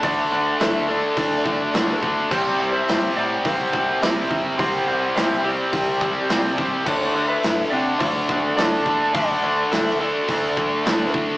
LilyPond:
<<
  \new Staff \with { instrumentName = "Lead electric guitar" } { \time 4/4 \key d \mixolydian \tempo 4 = 105 fis''4 e''8 d''2 r8 | d''8. e''8. fis''8 fis''4 g''4 | fis''4 e''8 d''2 r8 | d''8. e''8. fis''8 fis''4 a''4 |
fis''4 e''8 d''2 r8 | }
  \new Staff \with { instrumentName = "Lead electric guitar" } { \time 4/4 \key d \mixolydian d''4 a'8 a'2 r8 | g'8. c''8. d''8 c''4 e''4 | c''4 c''8 g'2 r8 | a'8. b'8. d''8 d''4 d''4 |
d''4 a'8 a'2 r8 | }
  \new Staff \with { instrumentName = "Distorted electric guitar" } { \time 4/4 \key d \mixolydian <d a d'>4. <d a d'>2~ <d a d'>8 | <c g c'>4. <c g c'>2~ <c g c'>8 | <c g c'>4. <c g c'>2~ <c g c'>8 | <d a d'>4. <d a d'>2~ <d a d'>8 |
<d a d'>4. <d a d'>2~ <d a d'>8 | }
  \new Staff \with { instrumentName = "Distorted electric guitar" } { \time 4/4 \key d \mixolydian <d a d'>8 <d a d'>8 <d a d'>8 <d a d'>8 <d a d'>8 <d a d'>8 <d a d'>8 <d a d'>8 | <c g c'>8 <c g c'>8 <c g c'>8 <c g c'>8 <c g c'>8 <c g c'>8 <c g c'>8 <c g c'>8 | <c g c'>8 <c g c'>8 <c g c'>8 <c g c'>8 <c g c'>8 <c g c'>8 <c g c'>8 <c g c'>8 | <d a d'>8 <d a d'>8 <d a d'>8 <d a d'>8 <d a d'>8 <d a d'>8 <d a d'>8 <d a d'>8 |
<d a d'>8 <d a d'>8 <d a d'>8 <d a d'>8 <d a d'>8 <d a d'>8 <d a d'>8 <d a d'>8 | }
  \new Staff \with { instrumentName = "Picked electric bass" } { \clef bass \time 4/4 \key d \mixolydian d,8 d,8 d,4 d,4 d,4 | c,8 c,8 g,,8 a,8 c,8 c,8 c,4 | c,8 c,8 c,4 c,4 c,4 | d,8 d,8 a,,8 c8 d,8 d,8 d,4 |
d,8 d,8 d,4 d,4 d,4 | }
  \new DrumStaff \with { instrumentName = "Drums" } \drummode { \time 4/4 <hho bd>4 <hho sn>4 <hho bd>8 bd8 <hho sn>8 bd8 | <cymc bd>4 <hho sn>4 <hho bd>8 bd8 <hho sn>8 bd8 | <hho bd>4 <hho sn>16 sn8. <hho bd>8 bd8 <hho sn>8 bd8 | <cymc bd>4 <hho sn>4 <hho bd>8 bd8 <hho sn>8 bd8 |
<hho bd>4 <hho sn>16 sn8. <hho bd>8 bd8 <hho sn>8 bd8 | }
>>